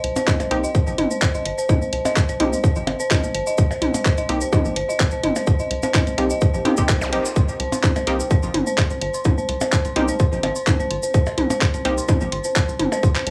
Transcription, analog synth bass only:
0.04 0.12 C2 loud
0.40 0.47 C2 medium
0.51 0.66 C2 medium
0.87 0.94 A#1 loud
0.98 1.06 G1 medium
1.34 1.41 C2 medium
1.45 1.53 G1 medium
1.69 1.77 C2 loud
1.93 2.01 C2 medium
2.29 2.36 C2 medium
2.40 2.55 C2 medium
2.76 2.83 A#1 loud
2.87 2.95 G1 medium
3.23 3.30 C2 medium
3.34 3.42 G1 medium
3.58 3.66 C2 loud
3.82 3.90 C2 medium
4.18 4.25 C2 medium
4.29 4.44 C2 medium
4.65 4.72 A#1 loud
4.76 4.84 G1 medium
5.12 5.19 C2 medium
5.24 5.31 G1 medium
5.47 5.55 C2 medium
5.71 5.79 C2 medium
6.07 6.14 C2 medium
6.18 6.33 C2 medium
6.54 6.61 A#1 loud
6.78 6.85 C2 medium
6.89 7.14 C2 loud
7.13 7.20 A#1 medium
7.36 7.44 C2 loud
7.60 7.68 C2 medium
7.96 8.03 C2 medium
8.07 8.22 C2 medium
8.43 8.50 A#1 loud
8.54 8.62 G1 medium
8.90 8.97 C2 medium
9.02 9.09 G1 medium
9.25 9.33 C2 loud
9.49 9.57 C2 medium
9.85 9.92 C2 medium
9.96 10.11 C2 loud
10.32 10.39 A#1 loud
10.43 10.51 G1 medium
10.80 10.86 C2 medium
10.91 10.98 G1 medium
11.14 11.22 C2 loud
11.38 11.46 C2 medium
11.74 11.81 C2 medium
11.85 12.00 C2 medium
12.21 12.28 A#1 loud
12.32 12.40 G1 medium
12.68 12.75 C2 medium
12.79 12.87 G1 medium
13.03 13.11 C2 loud
13.27 13.30 C2 loud

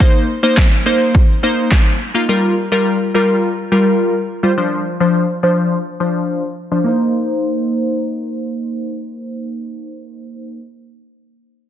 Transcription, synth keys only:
0.00 0.25 A#3 medium
0.00 0.26 D#4 medium
0.00 0.26 C5 loud
0.43 0.68 A#3 medium
0.43 0.68 D#4 medium
0.43 0.69 C5 medium
0.86 1.20 A#3 medium
0.86 1.20 D#4 medium
0.86 1.20 C5 medium
1.43 1.85 A#3 medium
1.43 1.86 D#4 medium
1.43 1.86 C5 medium
2.14 2.23 A#3 medium
2.14 2.23 D#4 medium
2.14 2.23 F4 medium
2.29 2.54 G3 medium
2.29 2.54 F4 medium
2.29 2.54 A#4 medium
2.72 2.97 G3 medium
2.72 2.97 F4 medium
2.72 2.97 A#4 medium
3.14 3.48 G3 medium
3.14 3.48 F4 medium
3.14 3.49 A#4 medium
3.72 4.14 G3 medium
3.72 4.14 F4 medium
3.72 4.14 A#4 medium
4.43 4.52 G3 medium
4.43 4.52 F4 medium
4.43 4.52 C5 medium
4.57 4.83 F3 medium
4.57 4.83 D4 medium
4.57 4.83 C5 medium
5.00 5.26 F3 medium
5.00 5.26 D4 medium
5.00 5.26 C5 medium
5.43 5.77 F3 medium
5.43 5.77 D4 medium
5.43 5.77 C5 medium
6.00 6.42 F3 medium
6.00 6.43 D4 medium
6.00 6.43 C5 medium
6.71 6.80 F3 medium
6.71 6.80 D4 medium
6.71 6.80 C5 medium
6.84 10.60 A#3 medium
6.84 10.61 D#4 medium
6.84 10.62 C5 medium

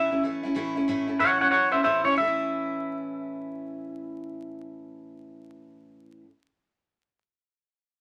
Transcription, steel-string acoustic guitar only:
0.00 0.11 A2 medium
0.00 0.12 E3 medium
0.00 0.12 A3 medium
0.00 0.11 C#4 medium
0.11 0.23 A3 soft
0.11 0.24 C#4 soft
0.11 0.23 E4 medium
0.23 0.44 E3 medium
0.23 0.44 A3 medium
0.23 0.44 C#4 medium
0.23 0.42 E4 medium
0.43 0.55 A3 medium
0.43 0.55 C#4 medium
0.43 0.55 E4 medium
0.55 0.75 A2 medium
0.55 0.76 E3 medium
0.55 0.76 A3 loud
0.55 0.76 C#4 medium
0.55 0.74 E4 loud
0.76 0.88 A3 medium
0.76 0.88 C#4 medium
0.76 0.88 E4 medium
0.88 1.08 A2 medium
0.88 1.08 E3 medium
0.88 1.08 A3 loud
0.88 1.07 C#4 medium
0.88 1.06 E4 medium
1.08 1.19 A3 soft
1.08 1.20 C#4 medium
1.08 1.20 E4 medium
1.20 1.40 A2 medium
1.20 1.40 E3 medium
1.20 1.40 A3 medium
1.20 1.39 C#4 medium
1.20 1.38 E4 medium
1.39 1.51 A3 soft
1.39 1.51 C#4 soft
1.39 1.52 E4 medium
1.51 1.72 E3 medium
1.51 1.72 A3 medium
1.51 1.72 C#4 medium
1.51 1.71 E4 medium
1.72 1.83 A3 soft
1.72 1.84 C#4 medium
1.72 1.84 E4 medium
1.84 2.04 A2 medium
1.84 2.04 E3 medium
1.84 2.05 A3 medium
1.84 2.04 C#4 medium
1.84 2.03 E4 medium
2.04 2.17 A3 soft
2.04 2.17 C#4 medium
2.04 2.16 E4 medium
2.11 6.22 A2 medium
2.16 6.24 E3 medium
2.16 6.26 A3 medium
2.24 6.28 C#4 medium
2.24 6.30 E4 medium

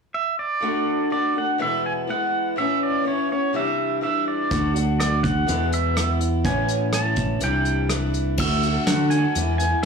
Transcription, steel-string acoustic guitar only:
0.61 1.09 D3 medium
0.61 1.10 A3 medium
0.61 1.11 D4 medium
0.61 1.12 F#4 medium
1.10 1.35 D3 soft
1.10 1.35 A3 soft
1.10 1.34 D4 medium
1.10 1.32 F#4 soft
1.33 1.59 A3 soft
1.33 1.60 D4 soft
1.33 1.59 F#4 soft
1.58 2.08 E2 medium
1.58 2.08 B2 medium
1.58 2.06 E3 medium
1.58 2.08 G#3 medium
1.58 2.08 B3 medium
1.58 2.09 E4 medium
2.07 2.56 E3 medium
2.07 2.57 G#3 medium
2.07 2.57 B3 medium
2.07 2.57 E4 medium
2.56 3.05 A2 medium
2.56 3.03 E3 medium
2.56 3.04 B3 medium
2.56 3.04 C#4 medium
2.56 3.05 E4 medium
3.04 3.29 E3 soft
3.04 3.30 B3 medium
3.04 3.29 C#4 soft
3.04 3.28 E4 medium
3.29 3.54 B3 soft
3.29 3.54 C#4 soft
3.29 3.54 E4 soft
3.53 4.02 C3 medium
3.53 4.00 E3 medium
3.53 4.01 G3 medium
3.53 4.02 D4 medium
3.53 4.03 E4 medium
4.01 4.50 E3 soft
4.01 4.51 G3 soft
4.01 4.51 D4 medium
4.01 4.52 E4 medium
4.50 4.75 D3 medium
4.50 4.76 A3 medium
4.50 4.75 D4 medium
4.50 4.73 F#4 medium
4.74 4.99 A3 soft
4.74 5.00 D4 soft
4.74 4.99 F#4 soft
5.00 5.47 D3 soft
5.00 5.47 A3 medium
5.00 5.48 D4 medium
5.00 5.49 F#4 soft
5.47 5.96 E2 medium
5.47 5.96 B2 medium
5.47 5.94 E3 medium
5.47 5.95 G#3 medium
5.47 5.95 B3 medium
5.47 5.97 E4 medium
5.95 6.44 E3 medium
5.95 6.45 G#3 medium
5.95 6.44 B3 medium
5.95 6.45 E4 medium
6.44 6.93 A2 medium
6.44 6.92 E3 medium
6.44 6.93 B3 medium
6.44 6.94 C#4 medium
6.44 6.94 E4 medium
6.93 7.40 E3 medium
6.93 7.43 B3 soft
6.93 7.42 C#4 medium
6.97 7.42 E4 medium
7.41 7.90 C3 medium
7.41 7.89 E3 medium
7.41 7.91 G3 medium
7.41 7.90 D4 medium
7.41 7.91 E4 medium
7.90 8.38 E3 medium
7.90 8.39 G3 soft
7.90 8.38 D4 medium
7.90 8.40 E4 medium
8.38 8.63 D3 medium
8.38 8.63 A3 medium
8.38 8.63 D4 medium
8.38 8.63 F#4 medium
8.64 8.88 A3 soft
8.64 8.88 D4 soft
8.64 8.88 F#4 soft
8.88 9.12 D3 medium
8.88 9.12 A3 medium
8.88 9.12 D4 medium
8.88 9.12 F#4 medium
9.14 9.36 A3 soft
9.14 9.37 D4 soft
9.14 9.37 F#4 medium
9.36 9.60 E3 medium
9.36 9.60 G#3 medium
9.36 9.60 B3 medium
9.36 9.58 E4 medium
9.60 9.84 E3 soft
9.60 9.84 G#3 soft
9.60 9.84 B3 medium
9.60 9.84 E4 soft

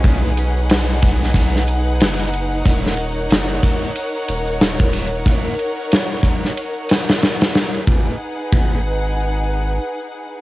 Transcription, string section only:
0.00 7.83 D#4 medium
0.00 2.61 G#4 medium
0.00 2.61 B4 medium
0.00 7.83 F#5 medium
2.65 7.83 A#4 medium
2.65 7.83 C#5 medium
7.87 10.41 D#4 medium
7.87 10.41 G#4 medium
7.87 10.41 B4 medium
7.87 10.41 F#5 medium

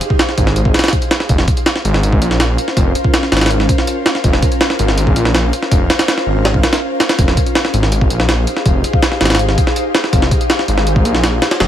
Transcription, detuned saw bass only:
0.38 0.73 G#1 loud
1.29 1.46 F1 loud
1.85 2.20 G#1 loud
2.21 2.57 A#1 medium
2.77 2.93 F1 loud
3.32 3.67 G#1 loud
4.24 4.41 F1 loud
4.79 5.15 G#1 loud
5.16 5.51 A#1 medium
5.71 5.88 F1 loud
6.26 6.62 G#1 loud
7.19 7.35 F1 loud
7.73 8.09 G#1 loud
8.10 8.46 A#1 medium
8.66 8.82 F1 loud
9.21 9.56 G#1 loud
10.13 10.30 F1 loud
10.68 11.04 G#1 loud
11.05 11.40 A#1 medium
11.60 11.68 F1 loud

